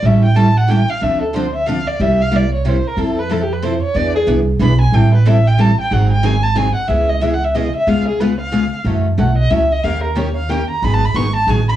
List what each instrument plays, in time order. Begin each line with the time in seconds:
0.03 upright bass A1, steel-string acoustic guitar E3 G3 C#4 E4 A4, violin E5
0.25 violin G5
0.36 steel-string acoustic guitar E3 G3 C#4 E4 A4, violin A5
0.57 violin F#5
0.69 steel-string acoustic guitar E3 G3 C#4 E4 A4, violin G5
0.89 violin F5
1.02 upright bass D2, steel-string acoustic guitar D3 F3 C4 D4 A4, violin E5
1.22 violin A4
1.34 steel-string acoustic guitar D3 F3 C4 D4 A4, violin C5
1.55 violin E5
1.66 steel-string acoustic guitar D3 F3 C4 D4 A4, violin F5
1.87 violin D5
1.99 upright bass C2, steel-string acoustic guitar C3 G3 A#3 E4 G4, violin E5
2.21 violin F5
2.31 steel-string acoustic guitar C3 G3 A#3 E4 G4
2.36 violin D5
2.54 violin C#5
2.65 steel-string acoustic guitar C3 G3 A#3 E4 G4, violin C5
2.87 violin A#4
2.97 upright bass F2, steel-string acoustic guitar F3 C4 E4 A4, violin A4
3.19 violin B4
3.31 steel-string acoustic guitar F3 C4 E4 A4, violin A4
3.43 violin G4
3.53 violin B4
3.62 steel-string acoustic guitar F3 C4 E4 A4, violin C5
3.82 violin C#5
3.95 upright bass E2, steel-string acoustic guitar E3 B3 D4 G#4 B4, violin D5
4.15 violin G#4
4.27 upright bass C2, steel-string acoustic guitar E3 B3 D4 G#4 B4
4.59 upright bass B1, steel-string acoustic guitar E3 B3 D4 G#4 B4, violin B5
4.81 violin G#5
4.92 upright bass A1, steel-string acoustic guitar E3 G3 C4 E4 A4, violin G5
5.14 violin B4
5.25 steel-string acoustic guitar E3 G3 C4 E4 A4, violin E5
5.47 violin G5
5.58 steel-string acoustic guitar E3 G3 C4 E4 A4, violin A5
5.80 violin G5
5.91 upright bass G#1, steel-string acoustic guitar D#3 F#3 C4 D#4 G#4, violin F#5
6.12 violin G5
6.23 steel-string acoustic guitar D#3 F#3 C4 D#4 G#4, violin G#5
6.43 violin A5
6.55 steel-string acoustic guitar D#3 F#3 C4 D#4 G#4, violin G#5
6.75 violin F#5
6.87 upright bass C#2, steel-string acoustic guitar C#3 E3 G#3 B3 C#4 E4 G#4, violin E5
7.09 violin D#5
7.22 steel-string acoustic guitar C#3 E3 G#3 B3 C#4 E4 G#4, violin E5
7.34 violin F#5
7.44 violin E5
7.55 steel-string acoustic guitar C#3 E3 G#3 B3 C#4 E4 G#4, violin D#5
7.76 violin E5
7.86 upright bass C#2, steel-string acoustic guitar C#3 G#3 B3 F4 G#4, violin F5
8.08 violin G#4
8.20 steel-string acoustic guitar C#3 G#3 B3 F4 G#4, violin B4
8.40 violin F5
8.52 steel-string acoustic guitar C#3 G#3 B3 F4 G#4
8.84 upright bass F#2, steel-string acoustic guitar C#3 E3 F#3 A3 C#4 E4 F#4 A4
9.17 upright bass B1, steel-string acoustic guitar C#3 E3 F#3 A3 C#4 E4 F#4 A4, violin F#5
9.38 violin D#5
9.50 upright bass C#2, steel-string acoustic guitar C#3 E3 F#3 A3 C#4 E4 F#4 A4, violin E5
9.72 violin D#5
9.83 upright bass D#2, steel-string acoustic guitar D#3 A#3 C#4 G4 A#4, violin F5
10.04 violin A#4
10.16 steel-string acoustic guitar D#3 A#3 C#4 G4 A#4, violin C#5
10.37 violin F5
10.49 steel-string acoustic guitar D#3 A#3 C#4 G4 A#4, violin G5
10.71 violin A#5
10.82 upright bass G#1, steel-string acoustic guitar D#3 F#3 B3 D#4 G#4, violin B5
10.94 violin A5
11.04 violin B5
11.14 upright bass G#1, steel-string acoustic guitar D#3 F#3 B3 D#4 G#4, violin C#6
11.36 violin A5
11.47 upright bass A1, steel-string acoustic guitar D#3 F#3 B3 D#4 G#4, violin G#5
11.69 violin B5